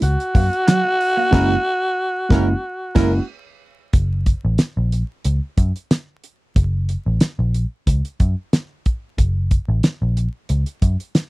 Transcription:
0.02 0.15 C#2 medium
0.02 3.25 F#4 loud
0.02 closed hi-hat medium
0.20 closed hi-hat soft
0.35 0.48 F#2 loud
0.35 0.47 A#3 medium
0.35 kick medium
0.35 open hi-hat medium
0.53 closed hi-hat medium
0.67 0.80 F#3 medium
0.67 snare loud
0.67 clap medium
0.67 closed hi-hat medium
0.84 muted clean electric guitar stroke soft
1.01 open hi-hat medium
1.17 1.28 A#3 medium
1.31 1.55 F#1 loud
1.31 1.54 G#3 loud
1.31 1.54 A#3 loud
1.31 1.54 C#4 loud
1.31 1.50 C#4 medium
1.31 1.55 E4 loud
1.31 1.49 E4 loud
1.31 1.49 A#4 loud
1.31 kick loud
1.31 snare loud
1.31 crash medium
2.29 2.53 F#1 loud
2.29 2.52 G#3 medium
2.29 2.52 A#3 medium
2.29 2.53 C#4 loud
2.29 2.48 C#4 loud
2.29 2.53 E4 medium
2.29 2.48 E4 medium
2.29 2.48 A#4 medium
2.29 kick loud
2.29 snare loud
2.95 3.18 F#1 loud
2.95 3.18 G#3 medium
2.95 3.18 A#3 loud
2.95 3.12 C#4 loud
2.95 3.18 C#4 loud
2.95 3.12 E4 loud
2.95 3.18 E4 loud
2.95 3.12 A#4 loud
2.95 kick loud
2.95 snare loud
2.95 crash medium
3.93 4.32 F#1 medium
3.93 kick loud
3.93 closed hi-hat medium
4.26 kick medium
4.26 closed hi-hat medium
4.45 4.56 A1 medium
4.58 muted picked electric bass stroke soft
4.58 snare medium
4.58 closed hi-hat medium
4.77 5.02 A#1 medium
4.92 closed hi-hat medium
5.25 5.39 C#2 medium
5.25 closed hi-hat medium
5.57 5.71 F#2 loud
5.57 kick medium
5.57 closed hi-hat medium
5.76 closed hi-hat soft
5.91 snare loud
5.91 closed hi-hat medium
6.24 closed hi-hat medium
6.56 6.95 F#1 medium
6.56 kick loud
6.56 closed hi-hat medium
6.89 closed hi-hat medium
7.06 7.18 A1 medium
7.20 muted picked electric bass stroke soft
7.20 snare loud
7.20 closed hi-hat loud
7.39 7.64 A#1 medium
7.54 closed hi-hat medium
7.87 8.01 C#2 medium
7.87 kick medium
7.87 closed hi-hat medium
8.05 closed hi-hat soft
8.20 8.34 F#2 loud
8.20 kick medium
8.20 closed hi-hat medium
8.53 snare loud
8.53 closed hi-hat medium
8.86 kick medium
8.86 closed hi-hat medium
9.18 9.57 F#1 medium
9.18 kick medium
9.18 closed hi-hat medium
9.51 kick medium
9.51 closed hi-hat medium
9.68 9.80 A1 medium
9.83 muted picked electric bass stroke soft
9.83 snare loud
9.83 closed hi-hat medium
10.02 10.27 A#1 medium
10.17 closed hi-hat medium
10.49 10.63 C#2 medium
10.49 closed hi-hat medium
10.66 closed hi-hat soft
10.82 10.96 F#2 loud
10.82 kick medium
10.82 closed hi-hat medium
11.00 closed hi-hat soft
11.15 snare loud
11.15 closed hi-hat medium

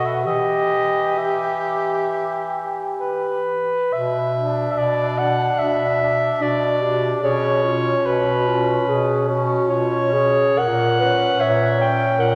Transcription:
0.00 0.27 B2 soft
0.00 0.26 F#4 soft
0.00 0.24 A4 soft
0.06 0.28 E5 soft
0.24 3.56 E3 soft
0.24 1.15 G4 soft
0.24 3.41 G4 soft
0.24 1.19 D#5 medium
1.17 3.52 G4 soft
1.17 2.82 E5 soft
2.99 3.95 B4 medium
3.91 4.67 B2 medium
3.91 4.71 E5 medium
4.37 5.17 D4 soft
4.72 4.80 E5 soft
4.77 5.49 B2 medium
4.77 5.20 D5 medium
5.19 5.99 D4 soft
5.19 5.60 F#5 medium
5.58 6.31 B2 medium
5.58 6.43 D4 soft
5.58 6.44 E5 medium
6.02 6.82 D4 soft
6.40 7.13 B2 soft
6.40 6.84 F#4 soft
6.40 7.24 D5 medium
6.82 7.22 D4 soft
6.82 7.22 G4 soft
7.22 7.95 B2 medium
7.22 7.63 C#4 soft
7.22 7.63 G#4 medium
7.22 8.07 C#5 medium
7.63 8.45 C#4 soft
7.63 8.07 F4 medium
8.04 8.77 B2 medium
8.04 8.49 F#4 medium
8.04 9.29 B4 medium
8.46 9.26 C#4 soft
8.46 8.88 F4 medium
8.86 9.59 B2 medium
8.86 9.29 G#4 medium
9.28 10.12 C#4 medium
9.28 9.70 F#4 medium
9.69 10.47 B2 medium
9.69 10.14 F4 medium
9.69 10.60 C#5 medium
10.13 10.58 C#4 soft
10.13 10.59 G#4 medium
10.58 11.31 A#2 medium
10.58 10.99 A#4 medium
10.58 11.42 F#5 medium
11.00 11.77 C#4 soft
11.00 11.41 B4 medium
11.39 12.09 A#2 medium
11.39 11.92 C#5 medium
11.39 11.80 E5 medium
11.79 12.35 C#4 medium
11.79 12.22 G5 medium
12.18 12.35 A#2 medium
12.18 12.35 A#4 medium
12.18 12.35 F#5 medium

